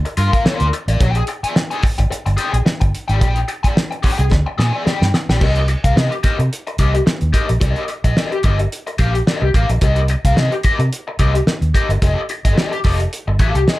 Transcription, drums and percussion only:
0.06 closed hi-hat
0.17 closed hi-hat
0.33 kick, closed hi-hat
0.46 snare
0.60 closed hi-hat
0.73 closed hi-hat
0.88 closed hi-hat
1.00 kick, closed hi-hat
1.15 closed hi-hat
1.27 closed hi-hat
1.44 closed hi-hat
1.56 snare
1.71 closed hi-hat
1.83 kick, open hi-hat
1.98 kick, closed hi-hat
2.12 closed hi-hat
2.26 closed hi-hat
2.38 closed hi-hat
2.54 closed hi-hat
2.66 snare
2.81 kick, closed hi-hat
2.95 closed hi-hat
3.09 closed hi-hat
3.21 kick, closed hi-hat
3.36 closed hi-hat
3.48 closed hi-hat
3.64 kick, closed hi-hat
3.77 snare
3.92 closed hi-hat
4.03 kick, open hi-hat
4.19 closed hi-hat
4.31 kick, snare
4.59 snare
4.87 snare
5.02 snare
5.14 snare
5.30 snare
5.41 kick, crash
5.56 closed hi-hat
5.68 closed hi-hat
5.84 kick, closed hi-hat
5.97 snare
6.12 closed hi-hat
6.23 kick, snare, closed hi-hat
6.40 closed hi-hat
6.53 closed hi-hat
6.67 closed hi-hat
6.78 kick, closed hi-hat
6.95 closed hi-hat
7.07 snare
7.21 closed hi-hat
7.34 kick, closed hi-hat
7.49 closed hi-hat
7.61 kick, closed hi-hat
7.76 closed hi-hat
7.88 closed hi-hat
8.04 kick, closed hi-hat
8.17 snare
8.32 closed hi-hat
8.43 kick, closed hi-hat
8.59 closed hi-hat
8.72 closed hi-hat
8.87 closed hi-hat
8.98 kick, closed hi-hat
9.15 closed hi-hat
9.27 snare
9.54 kick, closed hi-hat
9.69 closed hi-hat
9.81 kick, closed hi-hat
9.96 closed hi-hat
10.08 closed hi-hat
10.25 kick, closed hi-hat
10.37 snare
10.52 closed hi-hat
10.63 kick, closed hi-hat
10.80 closed hi-hat
10.93 closed hi-hat
11.19 kick, closed hi-hat
11.35 closed hi-hat
11.47 snare
11.62 closed hi-hat
11.75 kick, closed hi-hat
11.90 closed hi-hat
12.02 kick, closed hi-hat
12.29 closed hi-hat
12.45 kick, closed hi-hat
12.58 snare
12.73 closed hi-hat
12.84 kick, snare, open hi-hat
13.00 closed hi-hat
13.13 closed hi-hat
13.39 kick, closed hi-hat
13.55 closed hi-hat
13.68 snare

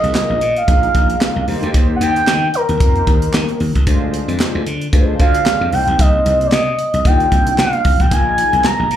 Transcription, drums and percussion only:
0.04 closed hi-hat
0.15 snare, clap
0.41 closed hi-hat
0.56 closed hi-hat
0.68 kick, closed hi-hat
0.83 closed hi-hat
0.95 kick, closed hi-hat
1.10 closed hi-hat
1.21 snare, clap
1.48 open hi-hat
1.63 closed hi-hat
1.74 kick, closed hi-hat
2.01 closed hi-hat
2.16 closed hi-hat
2.27 snare, clap
2.54 closed hi-hat
2.69 closed hi-hat
2.80 kick, closed hi-hat
2.96 closed hi-hat
3.07 kick, closed hi-hat
3.22 closed hi-hat
3.34 snare, clap
3.49 closed hi-hat
3.60 open hi-hat
3.75 kick, closed hi-hat
3.87 kick, closed hi-hat
4.14 closed hi-hat
4.29 closed hi-hat
4.40 snare, clap
4.66 closed hi-hat
4.81 closed hi-hat
4.93 kick, closed hi-hat
5.20 kick, closed hi-hat
5.34 closed hi-hat
5.46 snare, clap
5.72 open hi-hat
5.88 closed hi-hat
5.99 kick, closed hi-hat
6.26 closed hi-hat
6.41 closed hi-hat
6.52 snare, clap
6.79 closed hi-hat
6.94 closed hi-hat
7.05 kick, closed hi-hat
7.20 closed hi-hat
7.32 kick, closed hi-hat
7.47 closed hi-hat
7.58 snare, clap
7.73 closed hi-hat
7.85 kick, open hi-hat
8.00 kick, closed hi-hat
8.11 kick, closed hi-hat
8.38 closed hi-hat
8.53 closed hi-hat
8.64 snare, clap
8.91 closed hi-hat

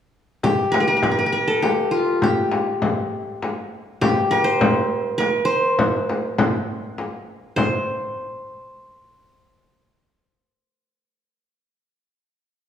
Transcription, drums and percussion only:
0.43 frame drum
0.74 frame drum
1.03 frame drum
1.63 frame drum
2.22 frame drum
2.52 frame drum
2.82 frame drum
3.43 frame drum
4.02 frame drum
4.31 frame drum
4.61 frame drum
5.20 frame drum
5.79 frame drum
6.09 frame drum
6.38 frame drum
6.98 frame drum
7.57 frame drum

